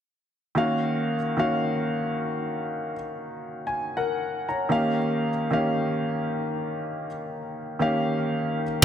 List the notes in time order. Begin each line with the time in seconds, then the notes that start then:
0.55 D#3 A#3 C#4 F#4 F5
1.37 D#3 A#3 C#4 F#4 F5
3.67 G#5
3.97 A#4 F#5
4.49 C#5 A#5
4.69 D#3 A#3 C#4 G4 F5
5.51 D#3 A#3 C#4 G4 F5
7.79 D#3 A#3 C#4 G4 F5